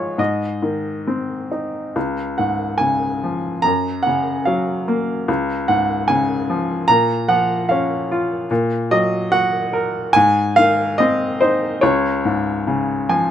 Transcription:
upright piano
Already playing: G#2 F3 G#3 F4 C#5
0.18 G#2 D#5
0.62 D#3
1.07 C4
1.51 D#4
1.96 C#2
2.38 G#2 F#5
2.78 C#3 G#5
3.23 F3
3.62 F#2 A#5
4.03 F#5
4.07 C#3
4.45 F#3 F5
4.88 A#3
5.28 C#2
5.68 G#2 F#5
6.08 C#3 G#5
6.50 F3
6.88 A#2 A#5
7.28 F3 F#5
7.69 C#4 F5
8.11 F4
8.51 A#2
8.91 F#3 D#5
9.32 F#4 F#5
9.73 A#4
10.13 G#2 G#5
10.56 D#3 F5
10.98 C4 D#5
11.41 D#4 C5
11.81 C#2 C#5
12.25 G#2
12.67 C#3
13.09 F3 G#5

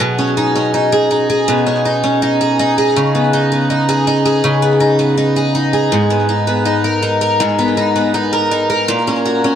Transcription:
twelve-string acoustic guitar
Already playing: F#3 C#4 F#4 G#4
0.00 B2
0.18 C#4
0.37 D#4
0.55 C#4
0.74 D#4
0.92 G#4
1.11 D#4
1.30 G#4
1.48 B2
1.66 C#4
1.85 D#4
2.04 C#4
2.22 D#4
2.41 G#4
2.59 D#4
2.78 G#4
2.96 C#3
3.15 B3
3.33 D#4
3.52 B3
3.70 D#4
3.89 G#4
4.07 D#4
4.26 G#4
4.44 C#3
4.62 B3
4.80 D#4
4.99 B3
5.18 D#4
5.36 G#4
5.55 D#4
5.73 G#4
5.92 G#2
6.10 B3
6.29 D#4
6.47 B3
6.65 D#4
6.84 A#4
7.03 D#4
7.21 A#4
7.40 G#2
7.59 B3
7.77 D#4
7.96 B3
8.14 D#4
8.33 A#4
8.51 D#4
8.70 A#4
8.88 A#2
9.07 C#4
9.26 F#4
9.44 C#4

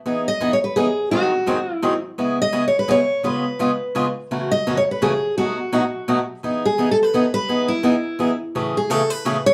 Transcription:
steel-string acoustic guitar
0.06 E3 B3 D#4 G#4
0.28 D#5
0.40 E3 B3 D#4 G#4
0.53 C#5
0.64 B4
0.76 E3 B3 D#4 G#4
1.11 G#2 D#3 F#3 C4 D#4 F#4 G#4
1.46 G#2 D#3 F#3 C4 D#4 G#4
1.74 E4
1.82 G#2 D#3 F#3 C4 D#4 G#4
2.18 C#3 G#3 B3 E4 G#4
2.42 D#5
2.52 C#3 G#3 B3 E4 G#4
2.68 C#5
2.79 B4
2.88 C#3 G#3 B3 E4 G#4 C#5
3.23 C#3 G#3 B3 F4 G#4 B4
3.59 C#3 G#3 B3 F4 G#4
3.95 C#3 G#3 B3 F4 G#4
4.31 F#2 C#3 E3 A3 C#4 F#4
4.51 D#5
4.67 F#2 C#3 E3 A3 C#4 F#4
4.77 C#5
4.91 B4
5.02 F#2 C#3 E3 A3 C#4 F#4 G#4
5.38 B2 F#3 A3 D#4 F#4
5.72 B2 F#3 A3 D#4 F#4
6.08 B2 F#3 A3 D#4 F#4
6.43 E3 B3 D#4 G#4
6.65 G#4
6.78 E3 B3 D#4 G#4
6.91 A4
7.03 B4
7.14 E3 B3 D#4 G#4
7.34 B4
7.49 E3 B3 D#4 G#4
7.68 E4
7.83 E3 B3 D#4 G#4
8.19 E3 B3 D#4 G#4
8.55 A2 C#3 E3 A3 C#4 G#4
8.77 G#4
8.90 A2 C#3 E3 A3 C#4 G#4 A4
9.10 B4
9.25 A2 C#3 E3 A3 C#4 G#4
9.46 C#5

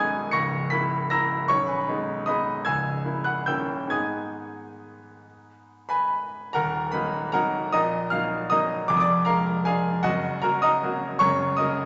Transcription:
grand piano
Already playing: B0 B1 G#3 B3 D#4 F#5 G#5 D#6 F#6 G#6
0.31 C#1 C#2 C#6 A#6 C#7
0.70 A#3 E4 B5 B6
1.10 A#3 E4 A#5 E6 A#6
1.48 B0 B1 C#5 C#6
1.67 B4 G#5 B5
1.88 G#3 B3 D#4
2.26 G#3 B3 D#4 D#5 B5 D#6
2.65 C#1 C#2 G#5 E6 G#6
3.05 A#3 E4
3.24 F#5 F#6
3.46 D#1 D#2 A#3 C#4 E4 G5 E6 G6
3.87 G#2 G#3 B3 D#4 G#6
3.91 G#5 D#6
5.89 B4 G#5 B5
6.53 D#1 D#2 A#4 F#5 A#5
6.92 F#3 A#3 D#4 B4 B5
7.32 F#3 A#3 D#4 A#4 F#5 A#5
7.72 A#1 A#2 D#5 A#5 D#6
8.10 F#3 A#3 D#4 F5 F6
8.50 F#3 A#3 D#4 D#5 A#5 D#6
8.88 F1 F2 D6
8.97 D6 D#6
9.01 D5
9.25 G#3 D4 A#4 F5 A#5
9.65 G#3 D4 G#4 F5 G#5
10.03 F#1 F#2 F#4 D#5 F#5
10.42 F#3 A#3 F#4 A#4 A#5
10.62 D#5 A#5 D#6
10.83 F#3 A#3 F#4
11.19 F#1 F#2 C#5 A#5 C#6
11.57 F#3 A#3 A#4 D#5 D#6

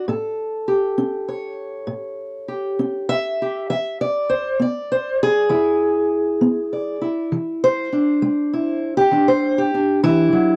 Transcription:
steel-string acoustic guitar
0.08 A2 A4
0.68 G4
0.98 C#4
1.29 C#5
1.87 A2
2.48 G4
2.79 C#4
3.09 E5
3.42 G4
3.70 E3 E5
4.01 D5
4.29 C5
4.60 B3 D5
4.92 C5
5.23 G#4
5.49 E3 E4
6.41 B3
6.73 D5
7.01 E4
7.32 E3
7.64 C5
7.92 D4
8.22 G#3
8.53 E4
8.97 G4
9.11 E3 D4
9.28 C5
9.58 G4
9.74 D4
10.03 E3 E4
10.33 F#3

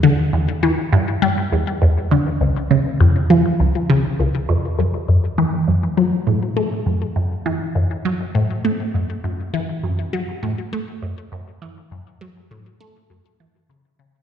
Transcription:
synth arpeggio sound
0.03 D3
0.33 E2
0.63 E3
0.93 G2
1.22 G3
1.52 E2
1.82 E2
2.11 D3
2.41 C#2
2.71 C#3
3.00 F2
3.30 F3
3.60 C#2
3.90 C#3
4.19 C#2
4.49 F2
4.79 F#2
5.08 F#2
5.38 E3
5.68 F#2
5.97 F#3
6.27 A2
6.57 A3
6.86 F#2
7.16 F#2
7.46 E3
7.75 F#2
8.05 F#3
8.35 A2
8.65 A3
8.94 F#2
9.24 F#2
9.54 E3
9.83 F#2
10.13 F#3
10.43 A2
10.73 A3
11.02 F#2
11.32 F#2
11.62 E3
11.91 F#2
12.21 F#3
12.51 A2
12.80 A3
13.10 F#2
13.40 E3
13.69 C#3
13.99 C#3

